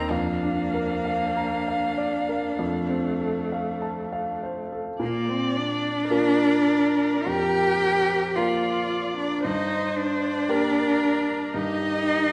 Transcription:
Already playing: C4 D#4 A#4 D#5 G5 A#5
0.10 F2 A#3 D4 F5
0.43 D4
0.74 A#4
1.05 F5
1.37 A#5
1.68 F5
1.98 D5
2.29 A#4
2.59 F2 A3
2.89 C4
3.21 A4
3.52 F5
3.82 A5
4.12 F5
4.43 C5
4.72 A4
5.00 A#2 A#3 A#4 D5
5.28 C4 C5
5.56 D4 D5
6.10 A#3 F4 A#4
7.26 F2 G4 G5
8.36 A#3 F4 A#4 D5 F5
9.17 D4 D5
9.44 G2 D#4 C5 D#5
9.96 D4 D5
10.48 A#3 G4 A#4
11.52 G2 D#4 G4 D#5

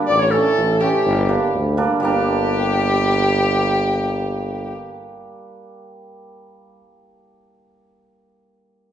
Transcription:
Already playing: G3
0.07 A1 D5
0.20 C#5
0.31 E3 A3 C#4 A4
0.35 A4
0.58 A1
0.74 A4
0.80 E3 A3 C#4 G4
1.06 G1
1.29 G3 A#3 D4
1.54 D2
1.77 G3 A#3 D4
2.00 G1 G3 A#3 G4
2.05 D4

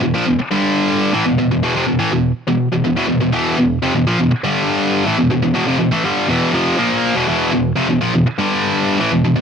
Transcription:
0.02 E2 B2
0.14 A#2 F3
0.26 E2 B2
0.39 muted distorted electric guitar stroke
0.51 G2 D3 G3
1.13 A2 E3
1.25 E2 B2
1.38 E2 B2
1.51 E2 B2
1.63 E2 B2
1.75 F2 C3
1.86 E2 B2
1.99 A2 E3
2.11 E2 B2
2.47 E2 B2
2.72 E2 B2
2.84 E2 B2
2.96 E2 B2
3.08 E2 B2
3.20 E2 B2
3.32 E2 B2 E3
3.58 E2 B2
3.82 F2 C3
3.95 E2 B2
4.07 A#2 F3
4.19 E2 B2
4.31 muted distorted electric guitar stroke
4.44 G2 D3 G3
5.05 A2 E3
5.18 E2 B2
5.30 E2 B2
5.43 E2 B2
5.54 E2 B2
5.67 F2 C3
5.79 E2 B2
5.92 A2 E3
6.04 G2 D3 G3
6.28 E2 B2 E3
6.53 F2 C3 F3
6.78 A#2 F3 A#3
7.15 E2 B2
7.28 E2 B2 E3
7.52 E2 B2
7.76 F2 C3
7.89 E2 B2
8.01 A#2 F3
8.14 E2 B2
8.26 muted distorted electric guitar stroke
8.38 G2 D3 G3
8.99 A2 E3
9.11 E2 B2
9.24 E2 B2
9.36 E2 B2

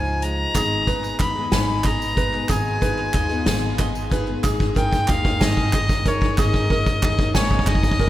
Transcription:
Already playing: C#2 F3 G#3 D#4 F4 G#5
0.22 G#3 A#5, closed hi-hat
0.54 G#1 G#2 B2 D#3 G#3 B3 D#4 G#4, kick, clap, closed hi-hat, tambourine
0.87 G#3 B3 D#4 G#4 B4, kick, clap, closed hi-hat
1.03 clap, tambourine
1.19 D#2 G#3 B3 D#4 G#4 D#5 B5, kick, clap, closed hi-hat, tambourine
1.35 G#3 B3 D#4 G#4
1.52 G#1 G#2 D#3 G#3 B3 D#4 G#4 G#5 B5, kick, snare, clap, closed hi-hat, tambourine
1.69 tambourine
1.84 G#3 B3 D#4 G#4 D#5 A#5, kick, clap, closed hi-hat, tambourine
2.02 tambourine
2.16 G#3 B3 D#4 G#4 B4, kick, closed hi-hat
2.33 G#3 B3 D#4 G#4, clap
2.49 G#1 G#2 D#3 G#3 B3 D#4 F4 G#4 G#5, kick, clap, closed hi-hat, tambourine
2.68 tambourine
2.81 G#3 B3 D#4 G#4 B4, kick, clap, closed hi-hat
2.98 clap
3.13 D#2 G#3 B3 D#4 G#4 D#5, kick, clap, closed hi-hat, tambourine
3.29 G#3 B3 D#4 G#4, tambourine
3.45 G#1 G#2 D#3 G#3 B3 D#4 G#4 G#5, kick, snare, clap, closed hi-hat, tambourine
3.77 G#3 B3 D#4 G#4 D#5, kick, clap, closed hi-hat, tambourine
3.95 tambourine
4.10 G#3 B3 D#4 G#4 B4, kick, closed hi-hat
4.26 G#3 B3 D#4 G#4, clap
4.43 G#1 A#2 G#3 A#3 D#4 G#4, kick, clap, closed hi-hat, tambourine
4.60 kick, tambourine
4.75 G#3 A#3 D#4 G#4 A#4 G5, kick, clap, closed hi-hat
4.92 kick, clap, tambourine
5.07 D#2 G#3 A#3 D#4 G#4 D#5 F5, kick, clap, closed hi-hat, tambourine
5.24 A#3 D#4 G#4, kick, tambourine
5.40 G#1 G#3 A#3 D#4 G#4 D#5 G#5, kick, snare, clap, closed hi-hat, tambourine
5.57 kick, tambourine
5.72 G#3 A#3 D#4 G#4 D#5, kick, clap, closed hi-hat, tambourine
5.89 kick, tambourine
6.05 G#3 A#3 D#4 G#4 A#4 C#5, kick, closed hi-hat
6.21 A#3 D#4 G#4, kick, clap
6.37 G#1 G#3 A#3 C#4 D#4 G#4 D#5, kick, clap, tambourine
6.54 kick, clap
6.69 G#3 A#3 D#4 G#4 A#4, kick
6.87 kick, tambourine
7.02 D#2 G#3 A#3 D#4 G#4 D#5, kick, clap
7.18 A#3 D#4 G#4, kick, tambourine
7.34 G#1 G#3 A#3 D#4 G#4 C#5 G#5, kick, snare, tambourine
7.51 kick, clap
7.59 kick
7.66 G#3 A#3 D#4 G#4 D#5, kick, clap
7.75 kick
7.83 kick, tambourine
7.92 kick
7.99 G#3 A#3 D#4 G#4 A#4, kick, clap, tambourine

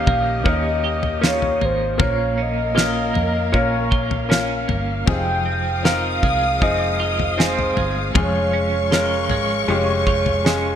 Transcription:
Already playing: A#2 D#3 A#3 C#4 D#4 G4 D#5 F5
0.07 A#1 A#3, kick, floor tom
0.44 D#2 A#3 C#4 D#4 A#4, kick
0.49 D#5
0.84 G4
1.03 floor tom
1.21 A#3 C#4 D#4 F4, snare
1.27 C#5
1.42 floor tom
1.61 G#1 A#3 C5, floor tom
1.98 A#1 A#2 A#3 C#4 F4 A#4 F5, kick, floor tom
2.02 C#5
2.38 C#4
2.42 D#5
2.75 A#3 C#4 F4 A#4, snare
3.14 F2 A#3, floor tom
3.52 A#1 A#3 C#4 F4 A#4, kick
3.57 C#5
3.91 F4, kick
4.11 floor tom
4.29 A#3 C#4 F4 A#4, snare
4.68 G1 A#3, floor tom
5.06 F1 F2 C3 G#3 C4 D#4 F4 G#4 G5 D#6, kick, floor tom
5.46 C4
5.83 C4 D#4 F4 A#4 F5, snare
6.23 C2 G#3, kick, floor tom
6.60 F1 C4 D#4 F4 G#4 D#5, kick
7.00 F4
7.19 floor tom
7.37 C4 D#4 F4 G#4 C5, snare
7.59 floor tom
7.76 G1 G#3, floor tom
8.14 F1 F3 G#3 C#4 F4 G#4 C#5 C#6, kick, floor tom
8.53 C#4
8.91 G#3 C#4 F4 A#4, snare
9.30 G#1 G#3, floor tom
9.68 F1 G#3 C#4 F4 G4
9.72 C#5
10.07 F4, kick
10.26 floor tom
10.45 G#3 C#4 F4 G#4, snare

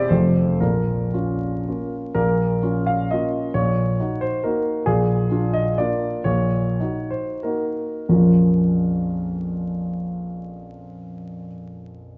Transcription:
Already playing: E1 E2 C4 G4 D5 E5
0.09 F1 F2 A3 C4 F4 C5
0.61 A#1 A#2 A#4
1.14 C#4 F4
1.68 A#3 C#4 F4
2.15 A#1 A#2 A#4
2.63 C#4 F4
2.86 F5
3.11 A#3 C#4 F4 D#5
3.54 A#1 A#2 C#5
4.00 D#4 F#4
4.21 C5
4.44 A#3 D#4 F#4 A#4
4.86 A#1 A#2 G#4
5.31 D4 F4
5.53 D#5
5.78 A#3 D4 F4 D5
6.24 A#1 A#2 C#5
6.80 D#4 F#4
7.10 C5
7.43 A#3 D#4 F#4 A#4
8.09 A#1 F2 F3 A#3 C#4 F4 A#4

